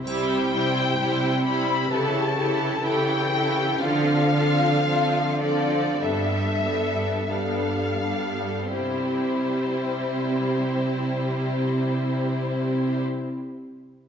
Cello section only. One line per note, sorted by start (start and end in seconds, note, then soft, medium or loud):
0.06 0.89 C3 soft
1.00 1.81 C3 soft
1.92 2.72 C#3 soft
2.83 3.69 C#3 soft
3.81 4.73 D3 soft
4.86 5.86 D3 soft
6.00 7.12 G2 soft
7.29 8.58 G2 soft
8.75 13.01 C3 soft